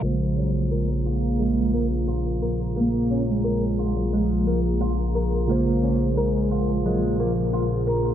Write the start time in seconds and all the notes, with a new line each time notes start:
0.01 A#1 C#3 F3 G#3 A#3 F4 G#4 C5 A#5
0.37 F#3 C#4
0.71 G#3 A#4
1.05 A#3 F4
1.39 G#3
1.74 A#3
2.08 F4
2.42 A#4
2.76 A#3
3.11 C#4
3.30 G#3
3.44 A#4
3.79 F4
3.98 F#3
4.13 F3 G#3
4.47 A#3
4.81 F4
5.15 A#4
5.47 C#3 G#3 A#3 F4 A#4
5.51 C5
5.83 C#4
6.16 G#3 A#4
6.51 F4
6.84 F#3 G#3
7.19 F3 A#3
7.53 F4
7.87 A#4